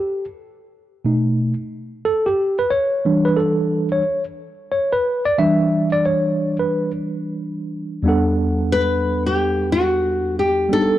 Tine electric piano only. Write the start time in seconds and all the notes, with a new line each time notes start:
Already playing: G4
1.05 B2 A3 D#4
2.05 A4
2.26 G4
2.59 B4
2.70 C#5
3.05 E3 G3 D4
3.25 B4
3.37 A4
3.92 C#5
4.72 C#5
4.93 B4
5.25 D5
5.38 E3 G3 D4 E5
5.92 D5
6.06 C#5
6.60 B4
8.03 E2 G3 B3 D4
8.08 A4 F#5
10.69 G3 B3 D4
10.74 D#4 G4
10.82 A4